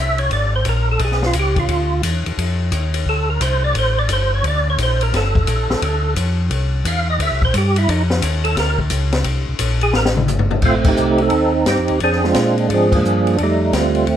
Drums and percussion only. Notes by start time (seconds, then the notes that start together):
0.18 ride
0.31 kick, ride
0.65 kick, hi-hat pedal, ride
0.99 kick, ride
1.12 snare
1.23 snare
1.33 kick, hi-hat pedal, ride
1.56 kick, ride
1.68 kick, ride
2.03 kick, hi-hat pedal, ride
2.26 ride
2.38 kick, ride
2.72 kick, hi-hat pedal, ride
2.94 ride
3.06 kick
3.41 kick, hi-hat pedal, ride
3.75 kick, ride
4.09 kick, hi-hat pedal, ride
4.44 kick, ride
4.78 kick, hi-hat pedal, ride
5.01 ride
5.13 kick, snare, ride
5.35 kick
5.47 kick, hi-hat pedal, ride
5.70 snare
5.82 kick, ride
6.16 kick, hi-hat pedal, ride
6.51 kick, ride
6.85 kick, hi-hat pedal, ride
7.20 kick, ride
7.42 kick
7.54 kick, hi-hat pedal, ride
7.76 ride
7.88 kick, ride
8.10 snare
8.22 kick, hi-hat pedal, ride
8.44 ride
8.57 kick, snare, ride
8.79 kick
8.90 kick, hi-hat pedal, ride
9.12 snare, ride
9.24 kick, ride
9.59 kick, hi-hat pedal, ride
9.81 ride
9.94 snare
10.05 snare
10.17 mid tom
10.28 floor tom, hi-hat pedal
10.39 floor tom
10.51 floor tom
10.62 kick, crash
10.84 kick, crash
10.96 hi-hat pedal
11.18 ride
11.30 kick, ride
11.66 kick, snare, hi-hat pedal, ride
11.88 ride
12.00 kick, ride
12.12 snare
12.24 snare
12.34 kick, snare, hi-hat pedal, ride
12.58 ride
12.70 kick, ride
12.92 kick, crash
13.05 hi-hat pedal
13.27 ride
13.38 kick, ride
13.73 kick, snare, hi-hat pedal, ride
13.95 ride
14.07 kick, ride